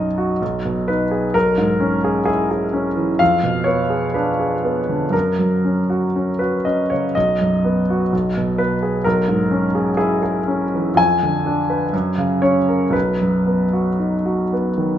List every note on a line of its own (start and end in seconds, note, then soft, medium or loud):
0.00 0.38 B1 soft
0.00 0.43 F#2 soft
0.00 0.32 D#4 soft
0.00 0.88 D#5 medium
0.18 0.41 F#4 soft
0.42 1.33 B1 soft
0.65 1.03 B2 soft
0.88 1.26 D#4 soft
0.88 1.35 B4 soft
1.11 1.35 G#4 soft
1.34 3.16 B1 soft
1.34 2.27 A#4 medium
1.58 1.95 G#2 soft
1.80 2.18 C#4 soft
2.04 2.24 G#4 soft
2.25 2.64 E4 soft
2.25 2.49 G#4 medium
2.51 2.88 G#4 soft
2.73 3.11 C#4 soft
2.96 3.20 E3 soft
3.19 5.09 F2 soft
3.19 3.67 F5 medium
3.43 3.81 B2 soft
3.64 4.05 B3 soft
3.64 4.13 C#5 medium
3.90 4.29 G#4 soft
4.14 4.54 D4 soft
4.14 5.13 B4 soft
4.39 4.79 G#4 soft
4.64 5.03 B3 soft
4.89 5.14 D3 soft
5.10 7.09 F#2 soft
5.10 6.39 A#4 soft
5.39 5.79 F#3 soft
5.65 6.04 C#4 soft
5.90 6.30 F#4 soft
6.16 6.56 C#4 soft
6.39 6.81 F#4 soft
6.39 6.65 B4 soft
6.65 7.06 C#4 soft
6.65 6.90 D#5 soft
6.90 7.16 C#3 soft
6.90 7.15 C#5 soft
7.15 8.10 B1 soft
7.15 8.59 D#5 medium
7.41 7.79 F#2 soft
7.64 8.03 B3 soft
7.90 8.13 F#4 soft
8.13 9.02 B1 soft
8.37 8.73 B2 soft
8.58 8.96 B3 soft
8.58 9.05 B4 soft
8.83 9.05 G#4 soft
9.04 10.94 B1 soft
9.04 9.97 A#4 medium
9.28 9.65 G#2 soft
9.51 9.88 C#4 soft
9.75 9.96 G#4 soft
9.97 10.37 E4 soft
9.97 10.21 G#4 medium
10.23 10.63 G#4 soft
10.48 10.88 C#4 soft
10.74 10.98 E3 soft
10.95 11.88 F2 soft
10.95 12.42 G#5 medium
11.23 11.60 D3 soft
11.46 11.83 D4 soft
11.70 11.93 B4 soft
11.93 12.91 F#2 soft
12.18 12.58 C#3 soft
12.42 12.84 C#4 soft
12.42 12.94 C#5 medium
12.68 12.94 A#4 soft
12.90 14.98 B1 soft
12.90 14.52 B4 soft
13.21 13.63 F#2 soft
13.47 13.89 B3 soft
13.73 14.15 F#4 soft
13.99 14.42 D#4 soft
14.25 14.69 F#4 soft
14.53 14.96 B3 soft
14.78 14.98 D#3 soft